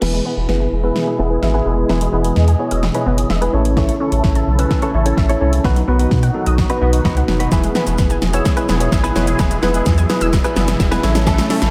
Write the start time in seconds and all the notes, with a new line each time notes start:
0.01 E1 B2 E3 G#3 B3 E4 G#4 B4, snare, crash
0.14 G#3
0.25 B3 E4 G#4 B4
0.37 E1 B3 E4 G#4 B4
0.48 F#1 B3 E4 G#4 B4, muted clean electric guitar stroke, snare
0.60 G#5, muted clean electric guitar stroke
0.72 E1
0.83 B3 E4 G#4 B4 E6, muted clean electric guitar stroke
0.96 snare
1.07 muted clean electric guitar stroke
1.19 E1 B3 E4 G#4 B4
1.30 B3 E4 G#4 B4, muted clean electric guitar stroke
1.42 G#1 E5, muted clean electric guitar stroke, snare
1.54 B3 E4 G#4 B4 G#5
1.65 F1 B3 E4 G#4 B4
1.78 muted clean electric guitar stroke
1.89 E1 E3 B3 E4 G#4 B4 D#5, snare
2.01 G#3, closed hi-hat
2.12 E1 B3 E4 G#4 B4
2.24 B3 E4 G#4 B4, closed hi-hat
2.36 E2, muted clean electric guitar stroke, snare
2.48 G#5, muted clean electric guitar stroke, closed hi-hat
2.59 B3 E4 G#4 C#5
2.71 E1 E6, muted clean electric guitar stroke, closed hi-hat
2.83 muted clean electric guitar stroke, snare
2.94 B3 E4 G#4 B4 C#5, closed hi-hat
3.06 F#1 B3 E4 G#4 B4
3.18 muted clean electric guitar stroke, closed hi-hat
3.30 E1 E5, muted clean electric guitar stroke, snare
3.41 B3 E4 G#4 B4 G#5, closed hi-hat
3.53 A1 C#3 A3 C#4 E4 A4 C#5
3.65 closed hi-hat
3.77 E3 C#4 E4 A4 C#5, kick, snare
3.88 A3, closed hi-hat
4.00 C#4 E4 A4 C#5
4.12 A1 C#4 E4 A4 C#5, closed hi-hat
4.23 A1 C#4 E4 A4 C#5, muted clean electric guitar stroke, kick, snare
4.35 A5, muted clean electric guitar stroke, closed hi-hat
4.47 B1
4.58 C#4 E4 A4 B4 E6, muted clean electric guitar stroke, closed hi-hat
4.71 muted clean electric guitar stroke, kick, snare
4.82 C#4 E4 A4 C#5, closed hi-hat
4.94 A1 C#4 E4 A4 C#5
5.05 C#4 E4 A4 C#5, muted clean electric guitar stroke, closed hi-hat
5.17 A1 E5, muted clean electric guitar stroke, kick, snare
5.29 C#4 E4 A4 C#5 A5, closed hi-hat
5.41 C2 C#4 E4 A4 C#5
5.53 muted clean electric guitar stroke, closed hi-hat
5.64 B1 B2 D#3 F#3 B3 D#4 F#4 B4, kick, snare
5.76 F#3, closed hi-hat
5.87 B1 B3 D#4 F#4 B4
5.99 B3 D#4 F#4 B4, closed hi-hat
6.11 B2, kick, snare
6.23 F#5, muted clean electric guitar stroke, closed hi-hat
6.34 B3 D#4 F#4 A4
6.46 B1 D#6, muted clean electric guitar stroke, closed hi-hat
6.58 muted clean electric guitar stroke, kick, snare
6.70 B3 D#4 F#4 B4, closed hi-hat
6.81 B1 B3 D#4 F#4 B4
6.93 muted clean electric guitar stroke, closed hi-hat
7.05 C#2 B3 D#4 F#4 B4 D#5, kick, snare
7.16 B3 D#4 F#4 B4 F#5, muted clean electric guitar stroke, closed hi-hat
7.28 F1, muted clean electric guitar stroke, snare
7.40 B3 D#4 F#4 B4, closed hi-hat
7.52 E1 E3 G#3 B3 E4 G#4 B4, kick, snare, riser, shaker
7.64 G#3, closed hi-hat, shaker
7.75 B3 E4 G#4 B4, snare, shaker
7.87 E1 B3 E4 G#4 B4, closed hi-hat, shaker
7.98 F#1 B3 E4 G#4 B4, muted clean electric guitar stroke, kick, snare, shaker
8.10 G#5, muted clean electric guitar stroke, closed hi-hat, shaker
8.22 E1, snare, shaker
8.33 B3 E4 G#4 C#5 E6, muted clean electric guitar stroke, closed hi-hat, shaker
8.45 muted clean electric guitar stroke, kick, snare, shaker
8.57 B3 E4 G#4 B4, closed hi-hat, shaker
8.68 E1 B3 E4 G#4 B4, snare, shaker
8.80 B3 E4 G#4 C#5, muted clean electric guitar stroke, closed hi-hat, shaker
8.92 G#1 E5, muted clean electric guitar stroke, kick, snare, shaker
9.04 B3 E4 G#4 B4 G#5, closed hi-hat, shaker
9.15 F1 B3 E4 G#4 B4 C#5, snare, shaker
9.27 muted clean electric guitar stroke, closed hi-hat, shaker
9.39 E1 E3 B3 E4 G#4 B4, kick, snare, shaker
9.51 G#3, closed hi-hat, shaker
9.62 E1 B3 E4 G#4 B4, snare, shaker
9.74 B3 E4 G#4 B4, closed hi-hat, shaker
9.86 E2, muted clean electric guitar stroke, kick, snare, shaker
9.98 G#5, muted clean electric guitar stroke, closed hi-hat, shaker
10.09 B3 E4 G#4 B4, snare, shaker
10.21 E1 E6, muted clean electric guitar stroke, closed hi-hat, shaker
10.33 muted clean electric guitar stroke, kick, snare, shaker
10.44 B3 E4 G#4 B4, closed hi-hat, shaker
10.56 F#1 B3 E4 G#4 B4, snare, shaker
10.68 muted clean electric guitar stroke, snare, closed hi-hat, shaker
10.80 E1 E5, muted clean electric guitar stroke, kick, snare, shaker
10.91 B3 E4 G#4 B4 G#5, snare, closed hi-hat, shaker
11.03 A1 C#3 A3 C#4 E4 A4 C#5, snare, shaker
11.15 muted clean electric guitar stroke, snare, closed hi-hat, shaker
11.27 E3 A3 C#4 E4 A4, kick, snare, shaker
11.38 A3, snare, closed hi-hat, shaker
11.50 A3 C#4 E4 A4, snare, open hi-hat, shaker
11.62 A1 A3 C#4 E4 A4, snare, closed hi-hat, shaker